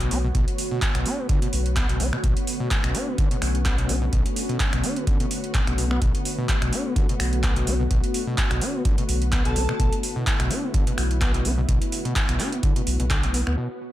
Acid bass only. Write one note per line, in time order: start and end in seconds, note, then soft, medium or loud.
0.01 0.13 B2 medium
0.11 0.18 D4 medium
0.24 0.28 B2 loud
0.35 0.46 B2 loud
0.71 0.80 B2 loud
0.95 1.07 B2 loud
1.06 1.20 D4 medium
1.18 1.27 B3 medium
1.29 1.40 D3 loud
1.42 1.48 B2 medium
1.76 1.87 B3 medium
1.89 2.02 B2 medium
2.00 2.07 D4 medium
2.13 2.17 B2 loud
2.24 2.34 B2 loud
2.60 2.69 B2 loud
2.84 2.96 B2 loud
2.94 3.09 D4 medium
3.07 3.16 B3 medium
3.18 3.29 D3 loud
3.31 3.37 B2 medium
3.65 3.76 B3 medium
3.79 3.90 B2 medium
3.89 3.96 D4 medium
4.02 4.06 B2 loud
4.13 4.23 B2 loud
4.49 4.58 B2 loud
4.73 4.85 B2 loud
4.84 4.98 D4 medium
4.96 5.05 B3 medium
5.07 5.18 D3 loud
5.20 5.26 B2 medium
5.54 5.62 B2 medium
5.67 5.73 B2 medium
5.78 5.85 B2 medium
5.91 6.00 B3 medium
6.02 6.12 B2 loud
6.38 6.47 B2 loud
6.62 6.74 B2 loud
6.72 6.87 D4 medium
6.85 6.94 B3 medium
6.96 7.07 D3 loud
7.09 7.15 B2 medium
7.43 7.54 B3 medium
7.56 7.68 B2 medium
7.67 7.74 D4 medium
7.80 7.83 B2 loud
7.91 8.01 B2 loud
8.27 8.36 B2 loud
8.51 8.63 B2 loud
8.61 8.76 D4 medium
8.74 8.83 B3 medium
8.85 8.96 D3 loud
8.98 9.04 B2 medium
9.33 9.43 B3 medium
9.45 9.58 B2 medium
9.56 9.63 D4 medium
9.69 9.73 B2 loud
9.80 9.90 B2 loud
10.16 10.25 B2 loud
10.40 10.52 B2 loud
10.51 10.65 D4 medium
10.63 10.72 B3 medium
10.74 10.85 D3 loud
10.87 10.93 B2 medium
11.21 11.32 B3 medium
11.34 11.46 B2 medium
11.45 11.52 D4 medium
11.58 11.62 B2 loud
11.69 11.79 B2 loud
12.05 12.14 B2 loud
12.29 12.41 B2 loud
12.40 12.54 D4 medium
12.53 12.61 B3 medium
12.63 12.74 D3 loud
12.76 12.82 B2 medium
13.00 13.06 B2 medium
13.10 13.25 D3 medium
13.23 13.27 B2 loud
13.34 13.41 B3 medium
13.47 13.56 B3 medium
13.58 13.68 B2 loud